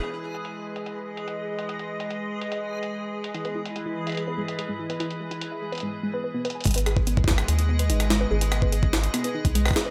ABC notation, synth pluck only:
X:1
M:4/4
L:1/16
Q:1/4=145
K:G#m
V:1 name="Synth pluck"
z16 | z16 | E B E z G E z e G B G, z G G, E B | E z G E z e G B G, z G, B B B, B g |
G, B G B B, B G z G z B, B D z G, B | G B B, B G z G z B, B D z G, B G B |]